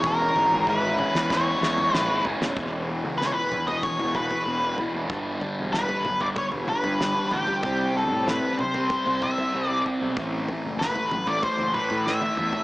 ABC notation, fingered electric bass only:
X:1
M:4/4
L:1/16
Q:1/4=95
K:C#dor
V:1 name="Fingered electric bass" clef=bass
E,,,2 G,,,4- G,,, E,,3 E,,2 A,,, G,,, F,,, E,,, | E,,,3 C,,2 z E,,2 z E,,,2 z E,,,2 z E,,, | =G,,,2 z E,,,2 z G,,,2 z E,,, z =G,,2 z =A,,, z | =C,,3 =A,,2 z =C,2 z C,,2 z C,,2 z B,,, |
=A,,,2 z F,,,2 z A,,,2 z F,,, z =A,,2 z E,, z |]